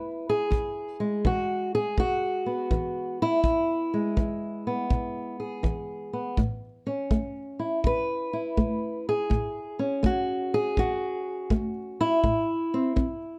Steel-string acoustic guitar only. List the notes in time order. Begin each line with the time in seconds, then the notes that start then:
Already playing: G#3 B3 E4 B4
0.29 G#4
0.51 E2
1.00 G#3
1.25 E3 F#4
1.75 G#4
1.97 B2 F#4
2.46 B3
2.71 E3
3.22 E4
3.44 E2
3.94 G#3
4.17 E3
4.67 B3
4.90 B2
5.40 G#4
5.63 E3
6.13 B3
6.38 A2
6.87 C#4
7.11 A3
7.59 E4
7.84 E2 B4
8.33 E4
8.57 A3
9.09 G#4
9.30 A2
9.79 C#4
10.03 A3 F#4
10.54 G#4
10.77 E2 F#4
11.51 A3
12.01 E4
12.24 A2
12.74 C4
12.96 C4